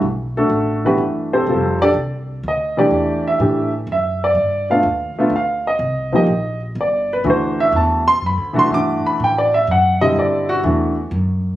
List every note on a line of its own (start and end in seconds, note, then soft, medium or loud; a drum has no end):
0.02 0.49 B1 medium
0.37 0.82 A3 medium
0.37 0.82 D4 medium
0.37 0.82 F#4 medium
0.37 0.82 A4 medium
0.49 0.97 A1 medium
0.85 1.45 E3 medium
0.85 1.45 A3 soft
0.85 1.00 B3 medium
0.85 1.45 D4 soft
0.85 1.00 F#4 medium
0.85 1.00 G4 medium
0.85 1.00 B4 medium
0.98 1.45 G1 medium
1.33 1.47 C4 medium
1.33 1.78 G4 medium
1.33 1.49 A4 medium
1.33 1.78 C5 medium
1.47 1.93 F1 medium
1.47 1.78 G3 medium
1.47 1.78 C4 medium
1.47 1.78 F4 medium
1.47 1.79 A4 medium
1.82 1.91 D4 medium
1.82 1.91 G4 medium
1.82 1.91 A4 medium
1.82 1.91 D5 loud
1.94 2.42 C2 medium
2.43 2.90 D2 medium
2.48 2.78 D#5 medium
2.77 3.37 E3 medium
2.77 3.38 A3 medium
2.77 3.38 D4 medium
2.77 3.38 G4 medium
2.77 3.23 D5 medium
2.91 3.38 E2 medium
3.27 3.71 E5 medium
3.40 3.86 A2 medium
3.40 3.70 E3 medium
3.40 3.70 A3 medium
3.40 3.70 D4 medium
3.40 3.71 G4 medium
3.87 4.34 F#2 medium
3.92 4.22 E5 medium
4.24 4.68 D5 medium
4.35 4.82 G2 medium
4.70 4.84 A3 medium
4.70 4.84 B3 medium
4.70 4.84 D4 medium
4.70 4.84 F4 medium
4.70 5.15 F5 medium
4.83 5.15 D#2 medium
5.15 5.32 A3 medium
5.15 5.32 B3 medium
5.15 muted upright bass stroke soft
5.20 5.33 D4 medium
5.20 5.33 F4 medium
5.30 5.78 D2 medium
5.36 5.67 F5 medium
5.67 6.12 D#5 medium
5.79 6.26 C2 medium
6.13 6.27 F3 medium
6.13 6.28 A#3 medium
6.13 6.28 D#4 medium
6.13 6.29 G4 medium
6.13 6.60 D#5 medium
6.26 6.75 A#1 medium
6.75 7.23 G1 medium
6.81 7.11 D5 medium
7.13 7.27 B4 medium
7.24 7.72 D2 medium
7.24 8.00 E3 medium
7.24 8.00 A3 medium
7.24 8.00 D4 medium
7.24 8.01 F#4 medium
7.30 7.60 C5 medium
7.60 7.74 E5 medium
7.72 8.20 E2 medium
7.72 8.07 A5 medium
8.08 8.22 C6 loud
8.22 8.37 F#2 medium
8.26 8.57 B5 medium
8.37 8.53 D2 medium
8.53 8.69 C2 medium
8.53 8.69 E3 medium
8.53 8.70 A3 medium
8.53 8.70 D4 medium
8.53 8.72 F#4 medium
8.59 8.72 C6 loud
8.70 9.01 G2 medium
8.70 9.45 E3 medium
8.70 9.46 A3 medium
8.70 9.46 D4 medium
8.70 9.47 F#4 medium
8.70 9.05 D6 loud
9.04 9.20 B5 medium
9.04 muted upright bass stroke soft
9.20 9.66 A2 medium
9.24 9.37 G5 medium
9.38 9.52 D5 medium
9.54 9.68 E5 medium
9.67 10.14 F#2 medium
9.67 10.01 F#5 medium
10.01 10.61 D3 medium
10.01 10.61 G3 medium
10.01 10.61 C4 medium
10.01 10.61 E4 medium
10.01 10.15 D#5 medium
10.16 10.62 G2 medium
10.16 10.49 D5 medium
10.49 10.58 F#4 loud
10.63 11.10 E2 medium
10.63 10.93 E3 medium
10.63 10.94 A3 medium
10.63 10.94 D4 medium
10.63 10.94 F#4 medium
11.11 11.56 F#2 medium